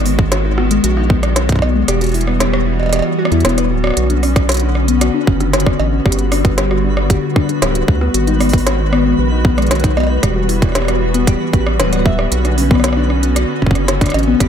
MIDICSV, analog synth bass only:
0, 0, Header, 1, 2, 480
1, 0, Start_track
1, 0, Key_signature, 2, "minor"
1, 0, Tempo, 521739
1, 1731, Time_signature, 4, 2, 24, 8
1, 13325, End_track
2, 0, Start_track
2, 0, Title_t, "Analog synth bass"
2, 0, Program_c, 0, 38
2, 0, Note_on_c, 0, 32, 94
2, 736, Note_off_c, 0, 32, 0
2, 772, Note_on_c, 0, 34, 97
2, 1252, Note_on_c, 0, 35, 83
2, 1266, Note_off_c, 0, 34, 0
2, 1696, Note_off_c, 0, 35, 0
2, 1732, Note_on_c, 0, 28, 99
2, 2776, Note_off_c, 0, 28, 0
2, 3052, Note_on_c, 0, 40, 98
2, 3166, Note_off_c, 0, 40, 0
2, 3172, Note_on_c, 0, 28, 89
2, 3412, Note_on_c, 0, 26, 103
2, 3426, Note_off_c, 0, 28, 0
2, 3607, Note_off_c, 0, 26, 0
2, 3652, Note_on_c, 0, 35, 99
2, 4696, Note_off_c, 0, 35, 0
2, 4851, Note_on_c, 0, 30, 86
2, 5296, Note_off_c, 0, 30, 0
2, 5332, Note_on_c, 0, 33, 101
2, 5527, Note_off_c, 0, 33, 0
2, 5571, Note_on_c, 0, 31, 97
2, 6616, Note_off_c, 0, 31, 0
2, 7012, Note_on_c, 0, 26, 88
2, 7207, Note_off_c, 0, 26, 0
2, 7251, Note_on_c, 0, 38, 94
2, 7447, Note_off_c, 0, 38, 0
2, 7492, Note_on_c, 0, 32, 98
2, 8416, Note_off_c, 0, 32, 0
2, 8452, Note_on_c, 0, 34, 104
2, 8932, Note_on_c, 0, 35, 87
2, 8945, Note_off_c, 0, 34, 0
2, 9376, Note_off_c, 0, 35, 0
2, 9412, Note_on_c, 0, 28, 95
2, 10456, Note_off_c, 0, 28, 0
2, 10611, Note_on_c, 0, 33, 86
2, 10852, Note_on_c, 0, 26, 104
2, 10866, Note_off_c, 0, 33, 0
2, 11296, Note_off_c, 0, 26, 0
2, 11332, Note_on_c, 0, 35, 101
2, 12376, Note_off_c, 0, 35, 0
2, 12531, Note_on_c, 0, 30, 88
2, 12976, Note_off_c, 0, 30, 0
2, 13011, Note_on_c, 0, 33, 103
2, 13207, Note_off_c, 0, 33, 0
2, 13251, Note_on_c, 0, 31, 99
2, 13325, Note_off_c, 0, 31, 0
2, 13325, End_track
0, 0, End_of_file